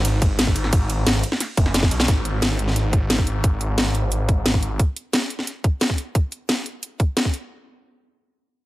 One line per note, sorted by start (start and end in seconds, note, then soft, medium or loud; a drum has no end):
0.00 0.20 G#1 medium
0.05 closed hi-hat loud
0.05 ride medium
0.22 0.54 G#1 loud
0.22 kick loud
0.22 closed hi-hat medium
0.22 ride medium
0.39 snare loud
0.39 closed hi-hat medium
0.39 ride medium
0.47 kick medium
0.56 1.05 G#1 loud
0.56 closed hi-hat medium
0.56 ride medium
0.64 snare soft
0.73 kick loud
0.73 closed hi-hat loud
0.73 ride medium
0.90 closed hi-hat medium
0.90 ride medium
1.07 1.22 G#1 medium
1.07 snare loud
1.07 closed hi-hat loud
1.07 ride medium
1.23 closed hi-hat medium
1.23 ride medium
1.32 snare soft
1.40 snare soft
1.40 closed hi-hat loud
1.40 ride medium
1.57 1.90 F#1 loud
1.57 kick loud
1.57 closed hi-hat medium
1.57 ride medium
1.66 snare soft
1.74 snare medium
1.74 closed hi-hat medium
1.74 ride medium
1.83 kick medium
1.83 snare medium
1.91 2.07 B1 loud
1.91 closed hi-hat medium
1.91 ride medium
2.00 snare medium
2.08 2.58 G#1 medium
2.08 kick loud
2.08 closed hi-hat medium
2.25 closed hi-hat medium
2.42 snare loud
2.42 closed hi-hat loud
2.59 2.92 G#1 medium
2.59 closed hi-hat medium
2.68 snare soft
2.76 closed hi-hat medium
2.93 3.26 G#1 loud
2.93 kick loud
2.93 closed hi-hat medium
3.10 snare loud
3.10 closed hi-hat medium
3.18 kick medium
3.27 3.76 G#1 loud
3.27 closed hi-hat medium
3.44 kick loud
3.44 closed hi-hat medium
3.61 closed hi-hat medium
3.78 4.78 G#1 loud
3.78 snare loud
3.78 closed hi-hat medium
3.95 closed hi-hat medium
4.12 closed hi-hat medium
4.29 kick loud
4.29 closed hi-hat medium
4.46 snare loud
4.46 closed hi-hat medium
4.54 kick medium
4.63 closed hi-hat medium
4.79 kick loud
4.79 closed hi-hat medium
4.96 closed hi-hat medium
5.13 snare loud
5.13 closed hi-hat medium
5.30 closed hi-hat medium
5.39 snare soft
5.47 closed hi-hat medium
5.64 kick loud
5.64 closed hi-hat medium
5.81 snare loud
5.81 closed hi-hat medium
5.90 kick medium
5.98 closed hi-hat medium
6.15 kick loud
6.15 closed hi-hat medium
6.32 closed hi-hat medium
6.49 snare loud
6.49 closed hi-hat medium
6.66 closed hi-hat medium
6.83 closed hi-hat medium
7.00 kick loud
7.00 closed hi-hat medium
7.17 snare loud
7.17 closed hi-hat medium
7.25 kick medium
7.34 closed hi-hat medium